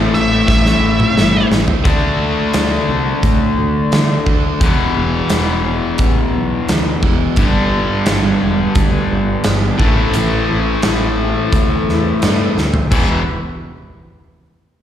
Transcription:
Already playing: A2 E3 A3 C4 E4 A4 C5
0.00 A3 C4 E4
0.14 A1 E4 A4 E5, muted overdriven electric guitar stroke, snare
0.32 A3 C4 E4
0.48 A1 E3 C4 E4 A4 E5, kick, snare
0.66 A3 C4 E4, snare
0.81 E3 C4 A4
0.86 A3 C4 E4
1.00 A3 C4 E4, mid tom
1.16 G1 A2 E3 A3 C4 E4 A4, snare
1.35 A3 C4 E4
1.51 A1 C4 E4 A4, snare
1.68 A3 C4 E4, floor tom
1.84 D2 D3 A3 D4 F#4, kick, closed hi-hat
1.88 D4
2.19 A3 D4 F#4
2.52 D2 D3 A3 D4 F#4, snare, closed hi-hat
2.88 C2 A3 F#4
3.21 A2 D3 A3 D4 F#4, kick, closed hi-hat
3.56 D2 A3 D4 F#4
3.91 D3 A3 D4 F#4, snare, closed hi-hat
4.25 D2 A3 D4 F#4, kick
4.29 D3
4.60 E1 E2 B2 E3 G3 B3 G4, kick, closed hi-hat
4.64 E3
4.94 E1 E3 G3 B3 G4
5.28 E1 E2 B2 E3 G3 B3 G4, snare, closed hi-hat
5.65 E3 G3 B3 G4
5.98 A1 E3 G3 B3 G4, kick, closed hi-hat
6.33 B1 E3 G3 B3 G4
6.67 D2 E2 B2 E3 G3 B3 G4, snare, closed hi-hat
7.01 E1 B2 E3 G3 B3 G4, kick
7.06 E2
7.34 G1 G2 D3 B3 D4 G4 B4, kick, closed hi-hat
7.38 D3 G3 B3 D4 G4
7.72 G3 B3 D4 G4
8.05 G1 G2 D3 G3 B3 D4 G4, snare, closed hi-hat
8.41 E1 G3 B3 D4 G4
8.74 D2 G3 B3 D4 G4, kick, closed hi-hat
9.11 G1 G3 B3 D4 G4
9.44 G1 G2 D3 G3 B3 D4 G4, snare, closed hi-hat
9.78 A1 A2 E3 A3 C4 C#4 E4 F4 A4 A#4 C#5, kick
9.99 C4 E4 A4 C5
10.13 A1 A2 E3 C4 E4 A4, closed hi-hat
10.48 A1 C4 E4 A4
10.82 A1 A2 E3 C4 E4 A4, snare, closed hi-hat
11.17 C4 E4
11.50 D2 E3 C4 E4 A4, kick, closed hi-hat
11.84 C4 E4 A4
11.88 E2, snare
12.18 A2 E3 C4 E4 A4
12.22 G2 A2 E3 A3, snare, closed hi-hat
12.56 D2 C4 E4 A4, snare
12.74 floor tom
12.88 E1 E2 B2 E3 G3 B3 E4 G4, kick
12.92 E2 B2 E3 B3 G4 B4, crash

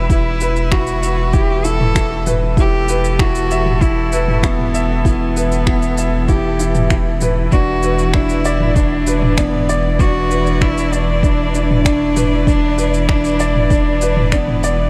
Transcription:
Already playing: E1 E3 E4 B4 E5
0.10 E4, kick, shaker
0.41 B4, shaker
0.56 shaker
0.71 E4 F#4, finger snap, kick
0.87 shaker
1.02 E5, shaker
1.33 E4 G4, kick, shaker
1.65 E4 A4, shaker
1.80 mid tom
1.95 E4, finger snap, kick, shaker
2.27 B4, mid tom, shaker
2.51 A4
2.57 E4 G4, kick, shaker
2.89 B4, shaker
3.04 shaker
3.19 E4 F#4, finger snap, kick
3.35 shaker
3.51 E5, shaker
3.66 mid tom
3.81 E4, kick, shaker
4.12 B4, shaker
4.28 mid tom
4.43 B3 E4, finger snap, kick, shaker
4.59 mid tom
4.74 E5, shaker
5.05 B3 E4, kick, shaker
5.37 B4, shaker
5.52 shaker
5.67 E4, finger snap, kick
5.82 shaker
5.98 E5, shaker
6.28 E4 G4, kick, shaker
6.60 E4, shaker
6.75 mid tom, shaker
6.90 E4, finger snap, kick, shaker
7.21 B4, mid tom, shaker
7.51 E1 D4 F#4, kick, shaker
7.66 B4
7.81 B4 D5, shaker
7.99 shaker
8.14 D4 E4, finger snap, kick
8.29 shaker
8.45 D5, shaker
8.60 mid tom
8.76 D4, kick, shaker
9.07 B4, shaker
9.22 mid tom
9.38 B3 D4, finger snap, kick, shaker
9.53 mid tom
9.69 D5, shaker
9.99 D4 F#4, kick, shaker
10.31 B4, shaker
10.47 shaker
10.61 D4 E4, finger snap, kick
10.78 shaker
10.92 D4 D5, shaker
11.23 D4, kick, shaker
11.55 D4, shaker
11.71 mid tom
11.84 D4, finger snap, kick, shaker
12.16 B4, mid tom, shaker
12.46 D4, kick, shaker
12.78 B4, shaker
12.94 shaker
13.08 D4, finger snap, kick
13.25 shaker
13.40 D5, shaker
13.55 mid tom
13.70 D4, kick, shaker
14.02 B4, shaker
14.17 mid tom
14.32 B3 D4, finger snap, kick, shaker
14.48 mid tom
14.64 D5, shaker

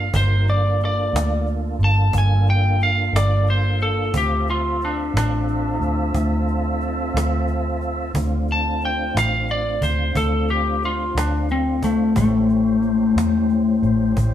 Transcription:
Already playing: F5
0.14 G1 A#3 D#4 F#4 A#4 C5, cajon bass
0.47 A#3 D4 F4 A4 D5, cajon slap
0.80 cajon slap
0.85 D5
1.13 D2, cajon slap
1.47 cajon slap
1.79 G1, cajon slap
1.84 A5
2.13 G1, cajon bass, cajon slap
2.18 G#5
2.47 G5, cajon slap
2.80 F5, cajon slap
3.13 G1 D5, cajon slap
3.47 C5, cajon slap
3.80 A4, cajon slap
4.14 D2 C4 F4 G4 A4 E5, cajon bass
4.48 F4, cajon slap
4.81 D4, cajon slap
5.14 A1 D4, cajon slap
5.48 cajon slap
5.80 D2, cajon slap
6.14 D2, cajon bass, cajon slap
6.48 cajon slap
6.81 cajon slap
7.14 D2, cajon slap
7.48 cajon slap
7.81 cajon slap
8.14 D2 A3 C4 D4 F4, cajon bass
8.48 A5, cajon slap
8.81 cajon slap
8.85 G5
9.15 A1 F5, cajon slap
9.48 D5, cajon slap
9.81 D2 C5, cajon bass
10.15 D2 A4, cajon bass
10.48 G4, cajon slap
10.83 F4, cajon slap
11.15 D2 D4, cajon slap
11.49 C4, cajon slap
11.83 A3, cajon bass
12.16 A1 A3 C#4 E4 G4 C5, cajon bass
12.49 cajon slap
12.83 cajon slap
13.16 E2, cajon slap
13.49 cajon slap
13.82 A1, cajon slap
14.16 A1, cajon bass, cajon slap

